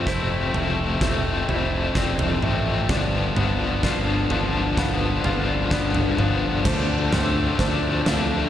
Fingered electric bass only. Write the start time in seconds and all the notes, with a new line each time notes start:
0.07 F1
0.54 F1
1.01 F1
1.48 F1
1.96 F1
2.43 A1
2.89 G1
3.37 G1
3.83 G1
4.31 G1
4.78 G1
5.25 G1
5.71 G1
6.18 G1
6.65 D2
7.59 D2
8.07 D2